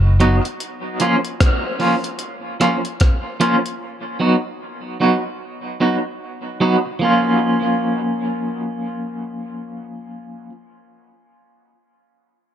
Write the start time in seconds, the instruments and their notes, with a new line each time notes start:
Already playing: fingered electric bass F#1
0.20 clean electric guitar F#3 B3 D#4 F#4, closed hi-hat
0.45 muted clean electric guitar stroke, closed hi-hat
0.60 closed hi-hat
1.00 clean electric guitar F3 A#3 C#4 F4, closed hi-hat
1.25 closed hi-hat
1.40 kick, cross-stick, closed hi-hat
1.80 clean electric guitar F3 A#3 C#4 F4, open hi-hat
2.04 closed hi-hat
2.19 closed hi-hat
2.60 clean electric guitar F3 A#3 C#4 F4, cross-stick, closed hi-hat
2.85 closed hi-hat
3.00 kick, cross-stick, closed hi-hat
3.40 clean electric guitar F3 A#3 C#4 F4, closed hi-hat
3.66 closed hi-hat
4.20 clean electric guitar F#3 B3 D#4 F#4
5.00 clean electric guitar F#3 B3 D#4 F#4
5.80 clean electric guitar F#3 B3 D#4 F#4
6.60 clean electric guitar F#3 B3 D#4 F#4
6.86 muted clean electric guitar stroke
6.99 clean electric guitar F3 A#3 C#4
7.05 clean electric guitar F4